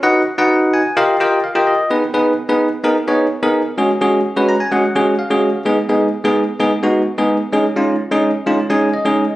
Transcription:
\new Staff \with { instrumentName = "Tine electric piano" } { \time 4/4 \key gis \dorian \tempo 4 = 128 << { r4. gis''8 g''4 eis''8 dis''8 | r1 | r4. ais''16 gis''16 fis''4 eis''4 | r1 |
r2 r8 gis''8 dis''4 | } \\ { <dis' fis' b' dis'' fis''>8 r16 <dis' fis' b' dis'' fis''>4 r16 <eis' g' ais' dis'' eis''>8 <eis' g' ais' dis'' g''>8 r16 <eis' g' ais' dis'' g''>8 r16 | <b dis' gis' b'>16 r16 <b dis' gis' b'>8 r16 <b dis' gis' b'>8 r16 <b dis' gis' ais'>16 r16 <b dis' gis' cis''>8 r16 <b dis' gis' ais'>8 r16 | <gis cis' fis' gis'>16 r16 <gis cis' fis' gis'>8 r16 <gis cis' fis' b'>8 r16 <gis cis' fis' gis'>16 r16 <gis cis' fis' gis'>8 r16 <gis cis' fis' gis'>8 r16 | <gis b dis' gis'>16 r16 <gis b dis' gis'>8 r16 <gis b dis' gis'>8 r16 <gis b dis' gis'>16 r16 <gis b dis' fis'>8 r16 <gis b dis' gis'>8 r16 |
<gis cis' dis' gis'>16 r16 <gis cis' dis' eis'>8 r16 <gis cis' dis' gis'>8 r16 <gis cis' dis' eis'>16 r16 <gis cis' dis' gis'>8 r16 <gis cis' dis' gis'>8 r16 | } >> }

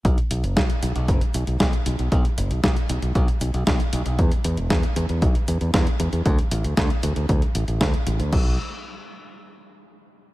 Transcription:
<<
  \new Staff \with { instrumentName = "Fingered electric bass" } { \clef bass \time 4/4 \key b \minor \tempo 4 = 116 b,,16 r16 b,,16 fis,,16 b,,16 r16 b,,16 b,,16 fis,,16 r16 b,,16 b,,16 b,,16 r16 b,,16 b,,16 | b,,16 r16 fis,,16 b,,16 b,,16 r16 b,,16 b,,16 b,,16 r16 b,,16 b,,16 b,,16 r16 b,,16 b,,16 | e,16 r16 e,16 e,,16 e,16 r16 e,16 e,16 b,,16 r16 e,16 e,16 e,16 r16 e,16 e,16 | d,16 r16 a,,16 d,16 d,16 r16 d,16 d,16 d,16 r16 a,,16 a,,16 d,16 r16 a,,16 d,16 |
b,,8 r2. r8 | }
  \new DrumStaff \with { instrumentName = "Drums" } \drummode { \time 4/4 <hh bd>16 hh16 hh16 hh16 <hh bd sn>16 hh16 hh16 hh16 <hh bd>16 hh16 hh16 hh16 <hh bd sn>16 hh16 hh16 hh16 | <hh bd>16 hh16 hh16 hh16 <hh bd sn>16 hh16 hh16 hh16 <hh bd>16 hh16 hh16 hh16 <hh bd sn>16 hh16 hh16 hh16 | <hh bd>16 hh16 hh16 hh16 <hh bd sn>16 hh16 hh16 hh16 <hh bd>16 hh16 hh16 hh16 <hh bd sn>16 hh16 hh16 hh16 | <hh bd>16 hh16 hh16 hh16 <hh bd sn>16 hh16 hh16 hh16 <hh bd>16 hh16 hh16 hh16 <hh bd sn>16 hh16 hh16 hh16 |
<cymc bd>4 r4 r4 r4 | }
>>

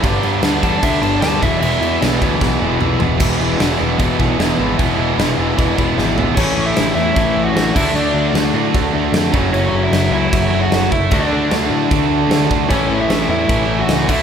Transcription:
<<
  \new Staff \with { instrumentName = "Lead electric guitar" } { \time 4/4 \key a \mixolydian \tempo 4 = 152 r4. a''8 e''8 a''8 a''8 e''8 | e''4 r2. | r1 | r1 |
<cis' cis''>8. <e' e''>8. <e' e''>4~ <e' e''>16 <fis' fis''>8. <e' e''>8 | <d' d''>4 r2. | <cis' cis''>8. <e' e''>8. <e' e''>4~ <e' e''>16 <fis' fis''>8. <e' e''>8 | <d' d''>4 r2. |
<cis' cis''>8. <e' e''>8. <e' e''>4~ <e' e''>16 <fis' fis''>8. <e' e''>8 | }
  \new Staff \with { instrumentName = "Overdriven electric guitar" } { \time 4/4 \key a \mixolydian <g, d g b d'>8 <g, d g b d'>8 <g, d g b d'>8 <g, d g b d'>8 <g, d g b d'>8 <g, d g b d'>8 <g, d g b d'>8 <e gis b e'>8 | <e gis b e'>8 <e gis b e'>8 <e gis b e'>8 <e gis b e'>8 <e gis b e'>8 <e gis b e'>8 <e gis b e'>8 <e gis b e'>8 | <e gis b e'>8 <e gis b e'>8 <e gis b e'>8 <e gis b e'>8 <e gis b e'>8 <e gis b e'>8 <e gis b e'>8 <e gis b e'>8 | <e gis b e'>8 <e gis b e'>8 <e gis b e'>8 <e gis b e'>8 <e gis b e'>8 <e gis b e'>8 <e gis b e'>8 <e gis b e'>8 |
<a, e a cis' e'>2 <a, e a cis' e'>4. <d a d' fis'>8~ | <d a d' fis'>4. <d a d' fis'>2 <fis a cis' fis'>8~ | <fis a cis' fis'>4. <fis a cis' fis'>2 r8 | <d a d' fis'>2 <d a d' fis'>2 |
<a, e a cis' e'>2 <a, e a cis' e'>4. <d a d' fis'>8 | }
  \new Staff \with { instrumentName = "Distorted electric guitar" } { \clef bass \time 4/4 \key a \mixolydian <g, d g>2 <g, d g>4. <e, b, e>8~ | <e, b, e>4. <e, b, e>2 r8 | <e, b, e>1 | <e, b, e>1 |
<a, e a>4. <a, e a>4. <a, e a>8 <d a d'>8~ | <d a d'>4 <d a d'>4. <d a d'>4 <fis, cis fis>8~ | <fis, cis fis>4 <fis, cis fis>4. <fis, cis fis>4 r8 | <d a d'>4. <d a d'>4. <d a d'>4 |
<a, e a>4. <a, e a>4. <a, e a>8 <d a d'>8 | }
  \new Staff \with { instrumentName = "Overdriven electric guitar" } { \clef bass \time 4/4 \key a \mixolydian <g, d g>8 <g, d g>8 <g, d g>8 <g, d g>8 <g, d g>8 <g, d g>8 <g, d g>8 <e, b, e>8 | <e, b, e>8 <e, b, e>8 <e, b, e>8 <e, b, e>8 <e, b, e>8 <e, b, e>8 <e, b, e>8 <e, b, e>8 | <e, b, e>8 <e, b, e>8 <e, b, e>8 <e, b, e>8 <e, b, e>8 <e, b, e>8 <e, b, e>8 <e, b, e>8 | <e, b, e>8 <e, b, e>8 <e, b, e>8 <e, b, e>8 <e, b, e>8 <e, b, e>8 <e, b, e>8 <e, b, e>8 |
<a, e a>2.~ <a, e a>8 <d a d'>8~ | <d a d'>2.~ <d a d'>8 <fis, cis fis>8~ | <fis, cis fis>2.~ <fis, cis fis>8 r8 | <d a d'>1 |
<a, e a>2.~ <a, e a>8 <d a d'>8 | }
  \new Staff \with { instrumentName = "Picked electric bass" } { \clef bass \time 4/4 \key a \mixolydian g,,8 g,8 d,8 e,8 d,8 g,,8 d,8 e,,8 | e,,8 e,8 b,,8 d,8 b,,8 e,,8 b,,8 e,,8 | e,,8 e,,8 e,,8 e,,8 e,,8 b,,8 e,,8 gis,,8 | e,,8 e,,8 e,,8 e,,8 e,,8 e,,8 gis,,4 |
a,,8 a,,8 a,,8 e,8 a,,8 a,,8 a,,8 d,8 | d,8 d,8 d,8 a,8 d,8 d,8 f,8 fis,,8 | fis,,8 fis,,8 fis,,8 cis,8 fis,,8 fis,,8 fis,,8 fis,,8 | d,8 d,8 d,8 a,8 d,8 d,8 d,8 d,8 |
a,,8 a,,8 a,,8 e,8 a,,8 a,,8 cis,8 d,8 | }
  \new DrumStaff \with { instrumentName = "Drums" } \drummode { \time 4/4 <cymc bd>8 cymc8 <cymc sn>8 <cymc bd>8 <cymc bd>8 cymc8 <cymc sn>8 <cymc bd>8 | cymc8 cymc8 <cymc sn>8 <cymc bd>8 <bd sn>4 toml8 tomfh8 | <cymc bd>4 <cymc sn>4 <cymc bd>8 bd8 <cymc sn>4 | <cymc bd>4 <cymc sn>4 <cymc bd>8 bd8 sn8 tomfh8 |
<cymc bd>4 <cymc sn>4 <cymc bd>4 <cymc sn>8 <cymc bd>8 | cymc4 <cymc sn>4 <cymc bd>4 <cymc sn>8 bd8 | cymc4 <cymc sn>4 <cymc bd>4 <cymc sn>8 bd8 | <cymc bd>4 <cymc sn>4 <cymc bd>4 <cymc sn>8 bd8 |
<cymc bd>4 <cymc sn>4 <cymc bd>4 <cymc sn>8 <cymc bd>8 | }
>>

